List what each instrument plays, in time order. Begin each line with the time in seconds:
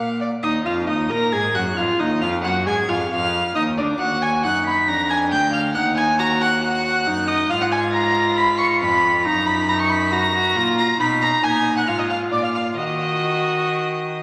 Already playing: cello A#2, viola A#4, violin F5
0.21 violin D5
0.43 cello D#2, viola D#4, violin D#5 D#6
0.65 cello F2, viola F4, violin F5 F6
0.87 cello D#2, viola D#4, violin D#5 D#6
1.10 cello A#2, viola A#4, violin A#5 A#6
1.32 cello G#2, viola G#4, violin G#5 G#6
1.55 cello F#2, viola F#4, violin F#5 F#6
1.77 cello F2, viola F4, violin F5 F6
1.99 cello D#2, viola D#4, violin D#5 D#6
2.21 cello F2, viola F4, violin F5 F6
2.44 cello F#2, viola F#4, violin F#5 F#6
2.66 cello G#2, viola G#4, violin G#5 G#6
2.89 cello F2, viola F4, violin F5 F6
3.10 cello F2, viola F4, violin F5 F6
3.55 cello D#2, viola D#4, violin D#5 D#6
3.77 cello D2, viola D4, violin D5 D6
3.99 cello D#2, viola F#4, violin F#5 F#6
4.22 violin G#5 G#6
4.43 cello F#2, viola D#4, violin F#5 F#6
4.66 violin B5 B6
4.88 cello F2, viola D4, violin A#5 A#6
5.10 violin G#5 G#6
5.31 cello D2, violin G5 G6
5.53 violin F5 F6
5.75 cello D#2, viola D#4, violin F#5 F#6
5.97 violin G#5 G#6
6.19 viola F#4, violin A#5 A#6
6.41 violin F#5 F#6
6.62 viola F#4, violin F#5 F#6
7.06 cello F#2, viola D#4
7.28 violin D#5 D#6
7.50 cello G#2, viola F4, violin F5 F6
7.61 violin F#5 F#6
7.71 violin G#5 G#6
7.93 violin A#5 A#6
8.36 violin B5 B6
8.58 violin C#6 C#7
8.80 cello F2, violin B5 B6
9.25 cello F#2, viola D#4, violin A#5 A#6
9.46 violin B5 B6
9.68 viola D#4, violin A#5 A#6
9.79 violin C#6 C#7
9.90 violin B5 B6
10.12 viola F#4, violin A#5 A#6
10.33 viola F#4
10.56 cello A#2, viola F4
10.78 violin A#5 A#6
10.99 cello B2, viola D#4, violin B5 B6
11.22 violin A#5 A#6
11.43 cello A#2, viola D#4, violin G#5 G#6
11.76 violin F#5 F#6
11.87 cello G#2, viola F4, violin F5 F6
11.99 violin D#5 D#6
12.10 violin F5 F6
12.31 cello A#2, violin D5 D6
12.43 violin F5 F6
12.54 violin F5 F6
12.77 cello D#3, viola F#4, violin D#5 D#6